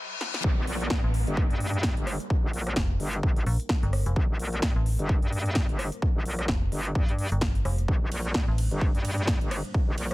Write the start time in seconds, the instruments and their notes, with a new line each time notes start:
Already playing: reverse cymbal, riser
0.21 snare
0.34 snare
0.44 wobble bass G1, analog synth pad G3 A#3 D4 A#4, kick, downlifter
0.57 wobble bass G1
0.67 wobble bass A#1, open hi-hat
0.81 closed hi-hat
0.90 wobble bass G2, kick, snare
1.04 fm bass A1
1.14 open hi-hat
1.27 wobble bass G1, closed hi-hat
1.37 kick
1.50 wobble bass G2, closed hi-hat
1.60 open hi-hat
1.74 closed hi-hat
1.83 kick, snare
1.97 wobble bass G1, closed hi-hat
2.07 cross-stick, open hi-hat
2.20 closed hi-hat
2.30 kick
2.43 wobble bass G1
2.53 wobble bass A#1, open hi-hat
2.67 cross-stick, closed hi-hat
2.76 fm bass F1, kick, snare
3.00 wobble bass G1, open hi-hat
3.13 closed hi-hat
3.23 wobble bass G1, kick
3.36 closed hi-hat
3.46 fm bass A#1, open hi-hat
3.60 closed hi-hat
3.69 kick, snare
3.83 fm bass G1, closed hi-hat
3.93 cross-stick, open hi-hat
4.06 fm bass F1, closed hi-hat
4.16 wobble bass G1, kick
4.30 wobble bass G1
4.39 wobble bass A#1, open hi-hat
4.53 closed hi-hat
4.62 wobble bass G2, kick, snare
4.76 fm bass A1
4.86 open hi-hat
4.99 wobble bass G1, closed hi-hat
5.09 kick
5.22 wobble bass G2, closed hi-hat
5.32 open hi-hat
5.46 closed hi-hat
5.55 kick, snare
5.69 wobble bass G1, closed hi-hat
5.79 cross-stick, open hi-hat
5.92 closed hi-hat
6.02 kick
6.15 wobble bass G1
6.25 wobble bass A#1, open hi-hat
6.39 cross-stick, closed hi-hat
6.48 fm bass F1, kick, snare
6.72 wobble bass G1, open hi-hat
6.85 closed hi-hat
6.95 wobble bass G2, kick
7.09 closed hi-hat
7.19 open hi-hat
7.32 fm bass G1, closed hi-hat
7.41 kick, snare
7.55 closed hi-hat
7.65 fm bass F1, cross-stick, open hi-hat
7.78 closed hi-hat
7.88 wobble bass G1, analog synth pad C5, kick
8.02 wobble bass G1
8.12 wobble bass A#1, open hi-hat, ride
8.25 closed hi-hat
8.34 wobble bass G2, kick, snare
8.48 fm bass A1
8.58 open hi-hat, ride
8.71 wobble bass G1, closed hi-hat
8.81 kick
8.95 wobble bass G2, closed hi-hat
9.05 open hi-hat, ride
9.18 closed hi-hat
9.27 kick, snare
9.41 wobble bass G1, closed hi-hat
9.51 cross-stick, open hi-hat, ride
9.64 closed hi-hat
9.74 kick
9.88 wobble bass G1
9.98 wobble bass A#1, open hi-hat, ride